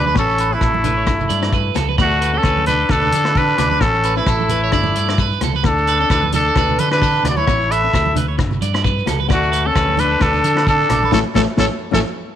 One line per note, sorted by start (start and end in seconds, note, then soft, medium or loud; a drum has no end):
0.00 0.13 D2 medium
0.00 0.15 D4 medium
0.00 0.14 B4 medium
0.06 0.16 B4 medium
0.06 high conga medium
0.14 0.55 A1 loud
0.14 0.29 B3 medium
0.14 0.38 C#5 medium
0.14 kick medium
0.14 cross-stick medium
0.14 shekere medium
0.19 0.57 C#4 medium
0.19 0.55 A4 medium
0.30 shekere soft
0.38 0.51 B4 medium
0.38 closed hi-hat soft
0.38 shekere medium
0.51 0.65 C#4 medium
0.51 1.77 E4 medium
0.51 0.61 B4 medium
0.55 1.77 A3 medium
0.61 1.07 A1 medium
0.61 0.84 A4 medium
0.61 kick medium
0.61 cross-stick medium
0.61 shekere medium
0.74 high conga medium
0.83 0.97 D4 medium
0.83 0.97 B4 medium
0.83 closed hi-hat soft
0.83 high conga medium
0.83 low conga medium
0.83 shekere medium
0.97 1.07 C#5 medium
1.06 1.27 G1 medium
1.06 1.20 D4 medium
1.06 muted clean electric guitar stroke medium
1.06 kick medium
1.06 cross-stick medium
1.06 shekere medium
1.20 low conga medium
1.20 shekere soft
1.29 1.69 G2 medium
1.29 1.41 D5 medium
1.29 closed hi-hat soft
1.29 high conga medium
1.29 shekere medium
1.41 1.55 D4 medium
1.41 1.52 D5 medium
1.41 cross-stick medium
1.41 shekere soft
1.53 1.75 B4 medium
1.53 kick medium
1.53 shekere medium
1.75 1.95 C#2 medium
1.75 1.89 B3 medium
1.75 1.87 A4 medium
1.75 cross-stick medium
1.75 closed hi-hat soft
1.75 low conga medium
1.75 shekere medium
1.88 1.98 B4 medium
1.88 high conga medium
1.98 2.38 D2 loud
1.98 2.37 A3 medium
1.98 2.12 B3 medium
1.98 2.39 F#4 medium
1.98 2.20 D5 medium
1.98 kick medium
1.98 cross-stick medium
1.98 shekere medium
2.11 shekere soft
2.21 2.33 B4 medium
2.21 closed hi-hat soft
2.21 shekere medium
2.33 2.47 C#4 medium
2.33 2.67 C#4 medium
2.33 2.44 A4 medium
2.37 2.66 A4 medium
2.43 2.83 D2 medium
2.43 2.66 B4 medium
2.43 kick medium
2.43 cross-stick medium
2.43 shekere medium
2.57 high conga medium
2.66 2.81 D4 medium
2.66 2.91 D4 medium
2.66 2.79 A4 medium
2.66 2.92 B4 medium
2.66 closed hi-hat soft
2.66 high conga medium
2.66 low conga medium
2.66 shekere medium
2.80 2.90 A4 medium
2.89 3.09 D2 medium
2.89 3.03 D4 medium
2.89 3.36 D4 medium
2.89 3.39 A4 loud
2.89 3.12 B4 medium
2.89 kick medium
2.89 cross-stick medium
2.89 shekere medium
3.02 low conga medium
3.02 shekere soft
3.12 3.52 D3 loud
3.12 3.25 A4 medium
3.12 closed hi-hat medium
3.12 high conga medium
3.12 shekere medium
3.25 3.39 D4 medium
3.25 3.35 B4 medium
3.25 cross-stick medium
3.25 shekere soft
3.35 3.84 D4 medium
3.35 3.57 A4 medium
3.35 3.83 B4 loud
3.35 kick medium
3.35 shekere medium
3.49 shekere soft
3.58 3.78 D2 medium
3.58 3.72 B3 medium
3.58 3.70 D5 medium
3.58 cross-stick medium
3.58 closed hi-hat soft
3.58 low conga medium
3.58 shekere medium
3.70 3.80 B4 medium
3.70 high conga medium
3.81 4.20 A1 loud
3.81 3.95 B3 medium
3.81 4.17 C#4 medium
3.81 4.16 A4 medium
3.81 muted clean electric guitar stroke medium
3.81 kick medium
3.81 cross-stick medium
3.81 shekere medium
3.94 shekere soft
4.03 4.16 B4 medium
4.03 closed hi-hat soft
4.03 shekere medium
4.16 5.38 A3 medium
4.16 4.30 C#4 medium
4.16 5.37 E4 medium
4.16 4.27 B4 medium
4.16 shekere soft
4.26 4.74 A1 medium
4.26 4.49 A4 medium
4.26 kick medium
4.26 cross-stick medium
4.26 shekere medium
4.40 high conga medium
4.40 shekere soft
4.49 4.62 B4 medium
4.49 closed hi-hat soft
4.49 high conga medium
4.49 low conga medium
4.49 shekere medium
4.64 4.73 C#5 medium
4.72 4.92 G1 medium
4.72 4.86 D4 medium
4.72 4.95 D5 medium
4.72 kick medium
4.72 cross-stick medium
4.72 shekere medium
4.84 high conga medium
4.84 low conga medium
4.84 shekere soft
4.94 5.35 G2 medium
4.94 5.08 D5 medium
4.94 closed hi-hat soft
4.94 high conga medium
4.94 shekere medium
5.08 5.22 D4 medium
5.08 5.19 D5 medium
5.08 cross-stick medium
5.18 5.41 B4 medium
5.18 kick medium
5.18 shekere medium
5.32 shekere soft
5.41 5.61 C#2 medium
5.41 5.55 B3 medium
5.41 5.54 A4 medium
5.41 cross-stick medium
5.41 closed hi-hat soft
5.41 low conga medium
5.41 shekere medium
5.53 5.65 B4 medium
5.53 high conga medium
5.53 shekere soft
5.63 6.03 D2 loud
5.63 5.77 B3 medium
5.63 6.30 D4 medium
5.63 6.29 A4 medium
5.63 muted clean electric guitar stroke medium
5.63 kick medium
5.63 cross-stick medium
5.63 shekere medium
5.78 shekere soft
5.87 6.00 B4 medium
5.87 closed hi-hat soft
5.87 shekere medium
6.00 6.14 C#4 medium
6.00 6.10 A4 medium
6.10 6.49 D2 medium
6.10 6.32 B4 medium
6.10 kick medium
6.10 cross-stick medium
6.10 shekere medium
6.23 high conga medium
6.32 6.46 D4 medium
6.32 6.80 D4 medium
6.32 6.45 A4 medium
6.32 6.80 A4 medium
6.32 closed hi-hat soft
6.32 high conga medium
6.32 low conga medium
6.32 shekere medium
6.48 6.57 A4 medium
6.56 6.75 D2 medium
6.56 6.70 D4 medium
6.56 6.79 B4 medium
6.56 kick medium
6.56 cross-stick medium
6.56 shekere medium
6.68 low conga medium
6.68 shekere soft
6.78 7.18 D3 medium
6.78 6.91 D4 medium
6.78 6.92 A4 medium
6.78 6.91 B4 medium
6.78 closed hi-hat soft
6.78 high conga medium
6.78 shekere medium
6.91 7.05 D4 medium
6.91 7.27 D4 medium
6.91 7.27 B4 medium
6.91 7.02 B4 medium
6.91 cross-stick medium
6.91 shekere soft
7.02 7.24 A4 medium
7.02 kick medium
7.02 shekere loud
7.15 shekere soft
7.23 7.43 D2 medium
7.23 7.38 B3 medium
7.23 7.37 D5 medium
7.23 cross-stick medium
7.23 closed hi-hat soft
7.23 low conga medium
7.23 shekere medium
7.29 7.39 F#4 medium
7.29 7.38 D5 medium
7.37 7.73 E4 medium
7.37 7.47 B4 medium
7.37 7.73 C#5 medium
7.37 high conga medium
7.47 7.87 A1 medium
7.47 7.61 B3 medium
7.47 7.69 C#5 medium
7.47 kick medium
7.47 cross-stick medium
7.47 shekere medium
7.61 shekere soft
7.71 8.17 A4 medium
7.71 7.82 B4 medium
7.71 8.16 E5 medium
7.71 closed hi-hat soft
7.71 shekere medium
7.84 7.97 C#4 medium
7.84 7.93 B4 medium
7.94 8.40 D2 medium
7.94 8.15 E4 medium
7.94 kick medium
7.94 cross-stick medium
7.94 shekere medium
8.06 high conga medium
8.15 8.29 D4 medium
8.15 8.28 B4 medium
8.15 closed hi-hat soft
8.15 high conga medium
8.15 low conga medium
8.15 shekere medium
8.28 8.38 C#5 medium
8.38 8.59 G1 medium
8.38 8.52 D4 medium
8.38 muted clean electric guitar stroke medium
8.38 kick medium
8.38 cross-stick medium
8.38 shekere medium
8.51 low conga medium
8.51 shekere soft
8.62 9.01 G2 medium
8.62 8.73 D5 medium
8.62 closed hi-hat medium
8.62 high conga medium
8.62 shekere medium
8.74 8.88 D4 medium
8.74 8.84 D5 medium
8.74 cross-stick medium
8.74 shekere soft
8.84 9.06 B4 medium
8.84 kick medium
8.84 shekere medium
8.98 shekere soft
9.06 9.27 C#2 medium
9.06 9.20 B3 medium
9.06 9.19 A4 medium
9.06 cross-stick medium
9.06 closed hi-hat soft
9.06 low conga medium
9.06 shekere medium
9.20 9.29 B4 medium
9.20 high conga medium
9.28 9.69 D2 medium
9.28 9.43 B3 medium
9.28 9.51 D5 medium
9.28 kick medium
9.28 cross-stick medium
9.28 shekere medium
9.33 9.69 A3 medium
9.33 9.68 F#4 medium
9.43 shekere soft
9.52 9.64 B4 medium
9.52 closed hi-hat soft
9.52 shekere medium
9.65 9.80 C#4 medium
9.65 10.01 C#4 medium
9.65 9.75 A4 medium
9.65 10.01 A4 medium
9.75 10.15 D2 medium
9.75 9.97 B4 medium
9.75 kick medium
9.75 cross-stick medium
9.75 shekere medium
9.88 high conga medium
9.97 10.12 D4 medium
9.97 10.22 D4 medium
9.97 10.10 A4 medium
9.97 10.23 B4 medium
9.97 closed hi-hat soft
9.97 high conga medium
9.97 low conga medium
9.97 shekere medium
10.12 10.21 A4 medium
10.20 10.41 D2 medium
10.20 10.34 D4 medium
10.20 10.68 D4 medium
10.20 10.67 A4 loud
10.20 10.43 B4 medium
10.20 kick medium
10.20 cross-stick medium
10.20 shekere medium
10.34 low conga medium
10.34 shekere soft
10.44 10.83 D3 medium
10.44 10.56 A4 medium
10.44 closed hi-hat soft
10.44 high conga medium
10.44 shekere medium
10.55 10.70 D4 medium
10.55 10.67 B4 medium
10.55 cross-stick medium
10.55 shekere soft
10.67 11.10 D4 medium
10.67 10.89 A4 medium
10.67 11.11 A4 medium
10.67 kick medium
10.67 shekere medium
10.81 shekere soft
10.89 11.09 A#1 medium
10.89 11.03 B3 medium
10.89 11.02 D5 medium
10.89 cross-stick medium
10.89 closed hi-hat medium
10.89 low conga medium
10.89 shekere medium
11.03 11.14 B4 medium
11.03 high conga medium
11.12 11.22 A1 medium
11.12 11.21 A3 medium
11.12 11.20 C#4 medium
11.12 11.19 C#4 medium
11.12 11.21 E4 medium
11.12 11.22 E4 medium
11.12 11.19 A4 medium
11.12 11.22 A4 medium
11.12 11.22 C#5 medium
11.12 kick medium
11.12 snare medium
11.12 high conga medium
11.12 shekere medium
11.34 11.45 A1 medium
11.34 11.43 A3 medium
11.34 11.41 C#4 medium
11.34 11.43 C#4 medium
11.34 11.43 E4 medium
11.34 11.44 E4 medium
11.34 11.41 A4 medium
11.34 11.44 A4 medium
11.34 11.44 C#5 medium
11.34 kick medium
11.34 snare medium
11.34 high conga medium
11.34 shekere medium
11.57 11.68 A1 medium
11.57 11.66 A3 medium
11.57 11.66 C#4 medium
11.57 11.65 C#4 medium
11.57 11.66 E4 medium
11.57 11.67 E4 medium
11.57 11.65 A4 medium
11.57 11.67 A4 medium
11.57 11.67 C#5 medium
11.57 kick medium
11.57 snare medium
11.57 high conga medium
11.57 shekere medium
11.91 12.01 A1 medium
11.91 11.99 A3 medium
11.91 11.99 C#4 medium
11.91 11.99 E4 medium
11.91 11.99 A4 medium
11.91 12.01 A4 medium
11.91 12.01 C#5 medium
11.91 kick medium
11.91 snare medium
11.95 12.02 C#4 medium
11.95 12.01 E4 medium
11.95 high conga medium
11.95 shekere medium